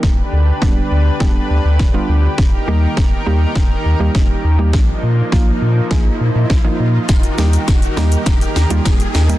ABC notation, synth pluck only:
X:1
M:4/4
L:1/16
Q:1/4=102
K:Eb
V:1 name="Synth pluck"
z4 [G,=B,DG]2 z2 [G,B,DG]3 z2 [G,B,DF]3 | z2 [G,B,EG]2 z2 [G,B,EG]3 z2 [G,B,EG]2 z2 [G,B,EG] | z4 [F,B,EF]2 z2 [F,B,EA]3 z2 [F,B,EF]3 | z2 [G,B,EG]2 z2 [G,B,EG]3 z2 [G,B,EF]2 z2 [G,B,EG] |]